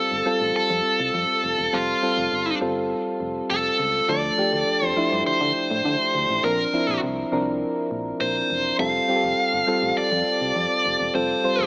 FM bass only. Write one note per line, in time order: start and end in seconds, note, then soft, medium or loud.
0.11 0.23 G1 medium
0.41 0.52 A1 medium
0.70 0.81 F2 medium
1.00 1.11 C2 medium
1.14 1.25 F2 medium
1.44 1.55 F1 medium
1.58 1.70 E1 medium
1.73 1.95 F1 loud
2.17 2.28 F1 medium
2.32 2.54 G1 medium
2.61 2.95 G1 loud
3.20 3.42 F1 medium
3.50 3.72 F1 medium
3.79 4.01 C#2 medium
4.09 4.31 D2 loud
4.53 4.64 D2 medium
4.82 4.93 F2 medium
5.12 5.23 G2 medium
5.26 5.32 D3 soft
5.41 5.52 D3 medium
5.71 5.82 A2 medium
5.85 5.96 D3 loud
6.15 6.26 D2 medium
6.29 6.40 A1 medium
6.44 6.66 A#1 loud
6.88 6.99 A#1 medium
7.03 7.25 C2 medium
7.32 7.65 C2 medium
7.91 8.13 A#1 medium
8.21 8.43 A#1 medium
8.50 8.72 E1 medium
8.79 9.01 F1 loud
9.23 9.34 F1 loud
9.53 9.64 G1 medium
9.82 9.93 A1 medium
9.97 10.03 F2 soft
10.12 10.23 F2 medium
10.41 10.52 C2 medium
10.56 10.67 F2 medium
10.85 10.96 F1 medium
11.00 11.11 E1 medium
11.15 11.37 F1 loud
11.59 11.66 F1 medium